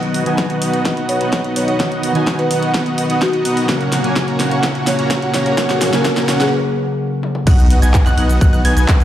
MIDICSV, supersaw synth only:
0, 0, Header, 1, 2, 480
1, 0, Start_track
1, 0, Key_signature, 5, "major"
1, 0, Tempo, 472441
1, 1828, Time_signature, 4, 2, 24, 8
1, 9186, End_track
2, 0, Start_track
2, 0, Title_t, "Supersaw synth"
2, 0, Program_c, 0, 81
2, 0, Note_on_c, 0, 59, 83
2, 0, Note_on_c, 0, 63, 75
2, 0, Note_on_c, 0, 66, 74
2, 0, Note_on_c, 0, 75, 73
2, 0, Note_on_c, 0, 78, 87
2, 238, Note_off_c, 0, 59, 0
2, 238, Note_off_c, 0, 63, 0
2, 238, Note_off_c, 0, 66, 0
2, 238, Note_off_c, 0, 75, 0
2, 238, Note_off_c, 0, 78, 0
2, 267, Note_on_c, 0, 59, 80
2, 267, Note_on_c, 0, 63, 76
2, 267, Note_on_c, 0, 66, 73
2, 267, Note_on_c, 0, 75, 72
2, 267, Note_on_c, 0, 80, 90
2, 478, Note_off_c, 0, 59, 0
2, 478, Note_off_c, 0, 63, 0
2, 478, Note_off_c, 0, 66, 0
2, 478, Note_off_c, 0, 75, 0
2, 479, Note_off_c, 0, 80, 0
2, 507, Note_on_c, 0, 59, 92
2, 507, Note_on_c, 0, 63, 87
2, 507, Note_on_c, 0, 66, 87
2, 507, Note_on_c, 0, 75, 86
2, 507, Note_on_c, 0, 78, 104
2, 609, Note_off_c, 0, 59, 0
2, 609, Note_off_c, 0, 63, 0
2, 609, Note_off_c, 0, 66, 0
2, 609, Note_off_c, 0, 75, 0
2, 609, Note_off_c, 0, 78, 0
2, 626, Note_on_c, 0, 59, 79
2, 626, Note_on_c, 0, 63, 73
2, 626, Note_on_c, 0, 66, 72
2, 626, Note_on_c, 0, 75, 71
2, 627, Note_on_c, 0, 78, 87
2, 838, Note_off_c, 0, 59, 0
2, 838, Note_off_c, 0, 63, 0
2, 838, Note_off_c, 0, 66, 0
2, 838, Note_off_c, 0, 75, 0
2, 838, Note_off_c, 0, 78, 0
2, 867, Note_on_c, 0, 59, 79
2, 867, Note_on_c, 0, 63, 72
2, 867, Note_on_c, 0, 66, 72
2, 867, Note_on_c, 0, 75, 74
2, 969, Note_off_c, 0, 59, 0
2, 969, Note_off_c, 0, 63, 0
2, 969, Note_off_c, 0, 66, 0
2, 969, Note_off_c, 0, 75, 0
2, 987, Note_on_c, 0, 59, 82
2, 987, Note_on_c, 0, 63, 76
2, 987, Note_on_c, 0, 75, 76
2, 987, Note_on_c, 0, 78, 93
2, 988, Note_on_c, 0, 66, 77
2, 1199, Note_off_c, 0, 59, 0
2, 1199, Note_off_c, 0, 63, 0
2, 1199, Note_off_c, 0, 66, 0
2, 1199, Note_off_c, 0, 75, 0
2, 1199, Note_off_c, 0, 78, 0
2, 1227, Note_on_c, 0, 59, 88
2, 1227, Note_on_c, 0, 63, 81
2, 1227, Note_on_c, 0, 66, 82
2, 1227, Note_on_c, 0, 75, 79
2, 1227, Note_on_c, 0, 78, 97
2, 1438, Note_off_c, 0, 59, 0
2, 1439, Note_off_c, 0, 63, 0
2, 1439, Note_off_c, 0, 66, 0
2, 1439, Note_off_c, 0, 75, 0
2, 1439, Note_off_c, 0, 78, 0
2, 1466, Note_on_c, 0, 63, 71
2, 1467, Note_on_c, 0, 59, 77
2, 1467, Note_on_c, 0, 66, 73
2, 1467, Note_on_c, 0, 75, 72
2, 1467, Note_on_c, 0, 78, 88
2, 1569, Note_off_c, 0, 59, 0
2, 1569, Note_off_c, 0, 63, 0
2, 1569, Note_off_c, 0, 66, 0
2, 1569, Note_off_c, 0, 75, 0
2, 1569, Note_off_c, 0, 78, 0
2, 1586, Note_on_c, 0, 59, 98
2, 1586, Note_on_c, 0, 63, 87
2, 1586, Note_on_c, 0, 66, 89
2, 1586, Note_on_c, 0, 75, 90
2, 1586, Note_on_c, 0, 78, 108
2, 1798, Note_off_c, 0, 59, 0
2, 1798, Note_off_c, 0, 63, 0
2, 1798, Note_off_c, 0, 66, 0
2, 1798, Note_off_c, 0, 75, 0
2, 1798, Note_off_c, 0, 78, 0
2, 1826, Note_on_c, 0, 59, 81
2, 1826, Note_on_c, 0, 63, 75
2, 1826, Note_on_c, 0, 66, 74
2, 1826, Note_on_c, 0, 75, 74
2, 1826, Note_on_c, 0, 78, 91
2, 2158, Note_off_c, 0, 59, 0
2, 2158, Note_off_c, 0, 63, 0
2, 2158, Note_off_c, 0, 66, 0
2, 2158, Note_off_c, 0, 75, 0
2, 2158, Note_off_c, 0, 78, 0
2, 2186, Note_on_c, 0, 66, 73
2, 2187, Note_on_c, 0, 59, 81
2, 2187, Note_on_c, 0, 63, 74
2, 2187, Note_on_c, 0, 75, 76
2, 2187, Note_on_c, 0, 80, 88
2, 2398, Note_off_c, 0, 59, 0
2, 2398, Note_off_c, 0, 63, 0
2, 2398, Note_off_c, 0, 66, 0
2, 2398, Note_off_c, 0, 75, 0
2, 2398, Note_off_c, 0, 80, 0
2, 2427, Note_on_c, 0, 59, 94
2, 2427, Note_on_c, 0, 63, 89
2, 2427, Note_on_c, 0, 66, 88
2, 2427, Note_on_c, 0, 75, 85
2, 2427, Note_on_c, 0, 78, 109
2, 2529, Note_off_c, 0, 59, 0
2, 2529, Note_off_c, 0, 63, 0
2, 2529, Note_off_c, 0, 66, 0
2, 2529, Note_off_c, 0, 75, 0
2, 2529, Note_off_c, 0, 78, 0
2, 2547, Note_on_c, 0, 59, 78
2, 2547, Note_on_c, 0, 63, 71
2, 2547, Note_on_c, 0, 66, 73
2, 2547, Note_on_c, 0, 75, 72
2, 2547, Note_on_c, 0, 78, 87
2, 2758, Note_off_c, 0, 59, 0
2, 2758, Note_off_c, 0, 75, 0
2, 2759, Note_off_c, 0, 63, 0
2, 2759, Note_off_c, 0, 66, 0
2, 2759, Note_off_c, 0, 78, 0
2, 2787, Note_on_c, 0, 59, 80
2, 2787, Note_on_c, 0, 63, 72
2, 2787, Note_on_c, 0, 66, 75
2, 2787, Note_on_c, 0, 78, 88
2, 2889, Note_off_c, 0, 59, 0
2, 2889, Note_off_c, 0, 63, 0
2, 2889, Note_off_c, 0, 66, 0
2, 2889, Note_off_c, 0, 78, 0
2, 2907, Note_on_c, 0, 59, 83
2, 2907, Note_on_c, 0, 63, 74
2, 2907, Note_on_c, 0, 66, 76
2, 2907, Note_on_c, 0, 75, 76
2, 2907, Note_on_c, 0, 78, 93
2, 3119, Note_off_c, 0, 59, 0
2, 3119, Note_off_c, 0, 63, 0
2, 3119, Note_off_c, 0, 66, 0
2, 3119, Note_off_c, 0, 75, 0
2, 3119, Note_off_c, 0, 78, 0
2, 3148, Note_on_c, 0, 59, 91
2, 3148, Note_on_c, 0, 63, 83
2, 3148, Note_on_c, 0, 66, 82
2, 3148, Note_on_c, 0, 75, 81
2, 3148, Note_on_c, 0, 78, 99
2, 3359, Note_off_c, 0, 59, 0
2, 3359, Note_off_c, 0, 63, 0
2, 3359, Note_off_c, 0, 66, 0
2, 3359, Note_off_c, 0, 75, 0
2, 3359, Note_off_c, 0, 78, 0
2, 3387, Note_on_c, 0, 59, 81
2, 3387, Note_on_c, 0, 63, 71
2, 3387, Note_on_c, 0, 66, 72
2, 3387, Note_on_c, 0, 75, 72
2, 3387, Note_on_c, 0, 78, 89
2, 3489, Note_off_c, 0, 59, 0
2, 3489, Note_off_c, 0, 63, 0
2, 3489, Note_off_c, 0, 66, 0
2, 3489, Note_off_c, 0, 75, 0
2, 3489, Note_off_c, 0, 78, 0
2, 3507, Note_on_c, 0, 59, 100
2, 3507, Note_on_c, 0, 63, 90
2, 3507, Note_on_c, 0, 66, 91
2, 3507, Note_on_c, 0, 75, 91
2, 3507, Note_on_c, 0, 78, 112
2, 3718, Note_off_c, 0, 63, 0
2, 3718, Note_off_c, 0, 66, 0
2, 3718, Note_off_c, 0, 78, 0
2, 3719, Note_off_c, 0, 59, 0
2, 3719, Note_off_c, 0, 75, 0
2, 3747, Note_on_c, 0, 66, 78
2, 3748, Note_on_c, 0, 58, 85
2, 3748, Note_on_c, 0, 61, 75
2, 3748, Note_on_c, 0, 73, 73
2, 3748, Note_on_c, 0, 78, 92
2, 4079, Note_off_c, 0, 58, 0
2, 4079, Note_off_c, 0, 61, 0
2, 4079, Note_off_c, 0, 66, 0
2, 4079, Note_off_c, 0, 73, 0
2, 4079, Note_off_c, 0, 78, 0
2, 4107, Note_on_c, 0, 66, 76
2, 4108, Note_on_c, 0, 58, 82
2, 4108, Note_on_c, 0, 61, 75
2, 4108, Note_on_c, 0, 73, 75
2, 4108, Note_on_c, 0, 80, 90
2, 4319, Note_off_c, 0, 58, 0
2, 4319, Note_off_c, 0, 61, 0
2, 4319, Note_off_c, 0, 66, 0
2, 4319, Note_off_c, 0, 73, 0
2, 4319, Note_off_c, 0, 80, 0
2, 4347, Note_on_c, 0, 58, 97
2, 4347, Note_on_c, 0, 61, 89
2, 4347, Note_on_c, 0, 66, 89
2, 4347, Note_on_c, 0, 73, 90
2, 4347, Note_on_c, 0, 82, 106
2, 4449, Note_off_c, 0, 58, 0
2, 4449, Note_off_c, 0, 61, 0
2, 4449, Note_off_c, 0, 66, 0
2, 4449, Note_off_c, 0, 73, 0
2, 4449, Note_off_c, 0, 82, 0
2, 4467, Note_on_c, 0, 58, 78
2, 4467, Note_on_c, 0, 61, 75
2, 4467, Note_on_c, 0, 66, 75
2, 4467, Note_on_c, 0, 73, 72
2, 4467, Note_on_c, 0, 78, 90
2, 4678, Note_off_c, 0, 58, 0
2, 4678, Note_off_c, 0, 61, 0
2, 4678, Note_off_c, 0, 66, 0
2, 4678, Note_off_c, 0, 73, 0
2, 4678, Note_off_c, 0, 78, 0
2, 4707, Note_on_c, 0, 58, 80
2, 4707, Note_on_c, 0, 61, 73
2, 4707, Note_on_c, 0, 66, 73
2, 4707, Note_on_c, 0, 73, 73
2, 4707, Note_on_c, 0, 78, 89
2, 4809, Note_off_c, 0, 58, 0
2, 4809, Note_off_c, 0, 61, 0
2, 4809, Note_off_c, 0, 66, 0
2, 4809, Note_off_c, 0, 73, 0
2, 4809, Note_off_c, 0, 78, 0
2, 4827, Note_on_c, 0, 58, 82
2, 4827, Note_on_c, 0, 61, 77
2, 4827, Note_on_c, 0, 66, 77
2, 4827, Note_on_c, 0, 73, 78
2, 4827, Note_on_c, 0, 78, 91
2, 5038, Note_off_c, 0, 58, 0
2, 5038, Note_off_c, 0, 66, 0
2, 5038, Note_off_c, 0, 73, 0
2, 5038, Note_off_c, 0, 78, 0
2, 5039, Note_off_c, 0, 61, 0
2, 5067, Note_on_c, 0, 58, 89
2, 5067, Note_on_c, 0, 61, 82
2, 5067, Note_on_c, 0, 66, 82
2, 5067, Note_on_c, 0, 73, 80
2, 5067, Note_on_c, 0, 82, 99
2, 5278, Note_off_c, 0, 58, 0
2, 5278, Note_off_c, 0, 61, 0
2, 5278, Note_off_c, 0, 66, 0
2, 5278, Note_off_c, 0, 73, 0
2, 5278, Note_off_c, 0, 82, 0
2, 5307, Note_on_c, 0, 58, 82
2, 5307, Note_on_c, 0, 61, 73
2, 5307, Note_on_c, 0, 66, 76
2, 5307, Note_on_c, 0, 73, 73
2, 5307, Note_on_c, 0, 78, 90
2, 5409, Note_off_c, 0, 58, 0
2, 5409, Note_off_c, 0, 61, 0
2, 5409, Note_off_c, 0, 66, 0
2, 5409, Note_off_c, 0, 73, 0
2, 5409, Note_off_c, 0, 78, 0
2, 5427, Note_on_c, 0, 58, 98
2, 5427, Note_on_c, 0, 61, 89
2, 5427, Note_on_c, 0, 66, 93
2, 5427, Note_on_c, 0, 73, 92
2, 5427, Note_on_c, 0, 82, 112
2, 5638, Note_off_c, 0, 58, 0
2, 5638, Note_off_c, 0, 61, 0
2, 5638, Note_off_c, 0, 66, 0
2, 5638, Note_off_c, 0, 73, 0
2, 5638, Note_off_c, 0, 82, 0
2, 5666, Note_on_c, 0, 66, 76
2, 5666, Note_on_c, 0, 78, 93
2, 5998, Note_off_c, 0, 66, 0
2, 5998, Note_off_c, 0, 78, 0
2, 6027, Note_on_c, 0, 58, 84
2, 6027, Note_on_c, 0, 61, 77
2, 6027, Note_on_c, 0, 66, 78
2, 6027, Note_on_c, 0, 73, 75
2, 6027, Note_on_c, 0, 80, 90
2, 6238, Note_off_c, 0, 58, 0
2, 6238, Note_off_c, 0, 66, 0
2, 6238, Note_off_c, 0, 73, 0
2, 6238, Note_off_c, 0, 80, 0
2, 6239, Note_off_c, 0, 61, 0
2, 6267, Note_on_c, 0, 58, 96
2, 6267, Note_on_c, 0, 61, 87
2, 6267, Note_on_c, 0, 66, 91
2, 6267, Note_on_c, 0, 73, 89
2, 6267, Note_on_c, 0, 82, 106
2, 6369, Note_off_c, 0, 58, 0
2, 6369, Note_off_c, 0, 61, 0
2, 6369, Note_off_c, 0, 66, 0
2, 6369, Note_off_c, 0, 73, 0
2, 6369, Note_off_c, 0, 82, 0
2, 6387, Note_on_c, 0, 58, 81
2, 6387, Note_on_c, 0, 61, 74
2, 6387, Note_on_c, 0, 66, 73
2, 6387, Note_on_c, 0, 73, 74
2, 6387, Note_on_c, 0, 78, 91
2, 6598, Note_off_c, 0, 66, 0
2, 6598, Note_off_c, 0, 73, 0
2, 6599, Note_off_c, 0, 58, 0
2, 6599, Note_off_c, 0, 61, 0
2, 6599, Note_off_c, 0, 78, 0
2, 7587, Note_on_c, 0, 59, 84
2, 7587, Note_on_c, 0, 63, 76
2, 7587, Note_on_c, 0, 66, 77
2, 7587, Note_on_c, 0, 75, 75
2, 7587, Note_on_c, 0, 78, 93
2, 7918, Note_off_c, 0, 63, 0
2, 7918, Note_off_c, 0, 66, 0
2, 7918, Note_off_c, 0, 75, 0
2, 7918, Note_off_c, 0, 78, 0
2, 7919, Note_off_c, 0, 59, 0
2, 7946, Note_on_c, 0, 75, 77
2, 7947, Note_on_c, 0, 59, 83
2, 7947, Note_on_c, 0, 63, 77
2, 7947, Note_on_c, 0, 66, 76
2, 7947, Note_on_c, 0, 80, 93
2, 8158, Note_off_c, 0, 59, 0
2, 8158, Note_off_c, 0, 63, 0
2, 8158, Note_off_c, 0, 66, 0
2, 8158, Note_off_c, 0, 75, 0
2, 8158, Note_off_c, 0, 80, 0
2, 8187, Note_on_c, 0, 59, 99
2, 8187, Note_on_c, 0, 63, 90
2, 8187, Note_on_c, 0, 66, 88
2, 8187, Note_on_c, 0, 75, 91
2, 8187, Note_on_c, 0, 78, 108
2, 8289, Note_off_c, 0, 59, 0
2, 8289, Note_off_c, 0, 63, 0
2, 8289, Note_off_c, 0, 66, 0
2, 8289, Note_off_c, 0, 75, 0
2, 8289, Note_off_c, 0, 78, 0
2, 8306, Note_on_c, 0, 63, 73
2, 8307, Note_on_c, 0, 59, 78
2, 8307, Note_on_c, 0, 66, 74
2, 8307, Note_on_c, 0, 75, 74
2, 8307, Note_on_c, 0, 78, 90
2, 8518, Note_off_c, 0, 59, 0
2, 8518, Note_off_c, 0, 63, 0
2, 8518, Note_off_c, 0, 66, 0
2, 8518, Note_off_c, 0, 75, 0
2, 8518, Note_off_c, 0, 78, 0
2, 8547, Note_on_c, 0, 59, 83
2, 8547, Note_on_c, 0, 63, 74
2, 8547, Note_on_c, 0, 66, 73
2, 8649, Note_off_c, 0, 59, 0
2, 8649, Note_off_c, 0, 63, 0
2, 8649, Note_off_c, 0, 66, 0
2, 8667, Note_on_c, 0, 59, 88
2, 8667, Note_on_c, 0, 63, 79
2, 8667, Note_on_c, 0, 66, 81
2, 8667, Note_on_c, 0, 75, 78
2, 8667, Note_on_c, 0, 78, 91
2, 8763, Note_off_c, 0, 59, 0
2, 8763, Note_off_c, 0, 63, 0
2, 8763, Note_off_c, 0, 66, 0
2, 8763, Note_off_c, 0, 75, 0
2, 8763, Note_off_c, 0, 78, 0
2, 8787, Note_on_c, 0, 59, 89
2, 8787, Note_on_c, 0, 63, 84
2, 8787, Note_on_c, 0, 66, 82
2, 8787, Note_on_c, 0, 75, 81
2, 8787, Note_on_c, 0, 80, 100
2, 8878, Note_off_c, 0, 59, 0
2, 8878, Note_off_c, 0, 75, 0
2, 8878, Note_off_c, 0, 80, 0
2, 8879, Note_off_c, 0, 63, 0
2, 8879, Note_off_c, 0, 66, 0
2, 8907, Note_on_c, 0, 59, 84
2, 8907, Note_on_c, 0, 63, 77
2, 8907, Note_on_c, 0, 66, 78
2, 8907, Note_on_c, 0, 75, 79
2, 8907, Note_on_c, 0, 80, 93
2, 8998, Note_off_c, 0, 59, 0
2, 8998, Note_off_c, 0, 63, 0
2, 8998, Note_off_c, 0, 66, 0
2, 8998, Note_off_c, 0, 75, 0
2, 8998, Note_off_c, 0, 80, 0
2, 9027, Note_on_c, 0, 59, 87
2, 9027, Note_on_c, 0, 63, 83
2, 9027, Note_on_c, 0, 66, 83
2, 9027, Note_on_c, 0, 75, 81
2, 9027, Note_on_c, 0, 78, 97
2, 9186, Note_off_c, 0, 59, 0
2, 9186, Note_off_c, 0, 63, 0
2, 9186, Note_off_c, 0, 66, 0
2, 9186, Note_off_c, 0, 75, 0
2, 9186, Note_off_c, 0, 78, 0
2, 9186, End_track
0, 0, End_of_file